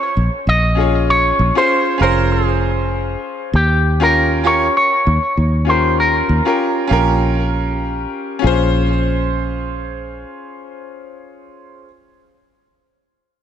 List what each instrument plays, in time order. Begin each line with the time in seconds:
Already playing: clean electric guitar C#5
0.17 fingered electric bass A#1
0.47 fingered electric bass A#1, clean electric guitar D#5
0.75 grand piano C#4 F4 G#4
0.80 grand piano C#5
1.10 clean electric guitar C#5
1.39 fingered electric bass A#1
1.55 grand piano C#4 F4 G#4 C5, clean electric guitar C5
1.98 fingered electric bass F1, grand piano C#4 F4 G#4, clean electric guitar A#4
2.03 grand piano C5
2.32 clean electric guitar G#4
3.53 fingered electric bass D#2, clean electric guitar G4
4.00 grand piano C#4 F4 G4 A#4, clean electric guitar A#4
4.44 grand piano C#4 F4 G4 A#4, clean electric guitar C#5
4.77 clean electric guitar C#5
5.07 fingered electric bass D#2
5.37 fingered electric bass D#2
5.65 grand piano C#4 F4 G4
5.69 grand piano A#4, clean electric guitar C5
6.00 clean electric guitar A#4
6.29 fingered electric bass D#2
6.45 grand piano C#4 F4 G4 A#4
6.87 fingered electric bass A#1, grand piano C#4 F4 G4
6.93 grand piano A#4
8.39 grand piano C#4 F4
8.44 fingered electric bass A#1, grand piano G#4 C5